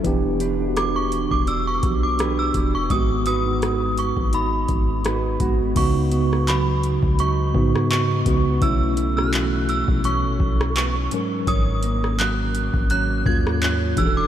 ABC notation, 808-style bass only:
X:1
M:4/4
L:1/16
Q:"Swing 16ths" 1/4=84
K:G#phr
V:1 name="808-style bass" clef=bass
E,,,6- E,,, E,,,3 B,,,4 E,,,2 | G,,,6- G,,, G,,,3 G,,,4 G,,,2 | [K:C#m] C,,6- C,, C,,3 G,,4 C,,2 | B,,,6- B,,, B,,,2 A,,, B,,,4 z2 |
G,,,6- G,,, G,,,3 D,,4 E,,,2 |]